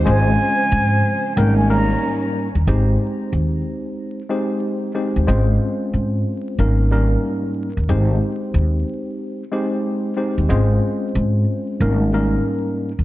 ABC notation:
X:1
M:4/4
L:1/16
Q:"Swing 16ths" 1/4=92
K:Ab
V:1 name="Muted trumpet"
a8 g a b3 z3 | z16 | z16 | z16 |
z16 |]
V:2 name="Tine electric piano"
[A,CDFc]8 [A,,G,B,DEB]2 [A,,G,B,DEB]4 z2 | [A,CEGc]8- [A,CEGc]2 [A,CEGc]4 [A,CEGc]2 | [A,CDFc]8 [A,,G,B,DEB]2 [A,,G,B,DEB]4 z2 | [A,CEGc]8- [A,CEGc]2 [A,CEGc]4 [A,CEGc]2 |
[A,CDFc]8 [A,,G,B,DEB]2 [A,,G,B,DEB]4 z2 |]
V:3 name="String section" clef=bass
[D,F,c]8 [E,G,D]8 | z16 | z16 | z16 |
z16 |]
V:4 name="Upright bass" clef=bass
A,,,2 z2 A,,2 z2 A,,,4 z3 E,, | A,,,2 z2 E,,2 z8 z E,, | A,,,2 z2 A,,2 z2 A,,,4 z3 E,, | A,,,2 z2 E,,2 z8 z E,, |
A,,,2 z2 A,,2 z2 A,,,4 z3 E,, |]